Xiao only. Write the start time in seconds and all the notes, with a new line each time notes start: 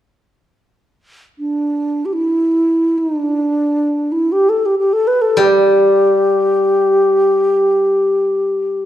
1.39 D4
2.05 G4
2.13 E4
2.98 D#4
3.17 D4
4.12 E4
4.32 G4
4.49 A4
4.66 G4
4.79 G4
4.93 A4
5.07 B4
5.22 A4
5.40 G4